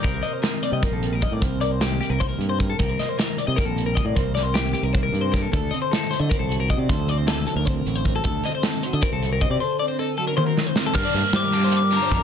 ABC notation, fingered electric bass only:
X:1
M:7/8
L:1/16
Q:1/4=155
K:Cdor
V:1 name="Fingered electric bass" clef=bass
C,,2 z4 z C, z B,,,4 A,, | C,,6- C,, C,,3 G,,4 | C,,2 z4 z C, z B,,,4 A,, | C,,6- C,, C,,3 G,,4 |
D,,2 z4 z D, z C,,4 C, | D,,6- D,, D,,3 A,,,4 | D,,2 z4 z D, z C,,4 C, | z12 z2 |
G,, z G,, z G,8 F,, z |]